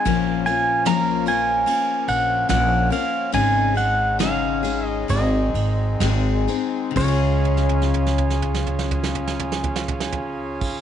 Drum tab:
CC |--------------------------------|--------------------------------|x-----------------------------x-|
RD |x---x---x---x---x---x---x---x---|x---x---x---x---x---x---x---x---|--------------------------------|
SD |--------o---------------o-------|--------o---------------o-------|-----o-o-o-o-o-o-o-o-o-o-o------|
FT |--------------------------------|--------------------------------|----o-o-o-o-o-o-o-o-o-o-o-o-----|
BD |o-----------------------o-------|o-----------------------o-------|o-----------------------------o-|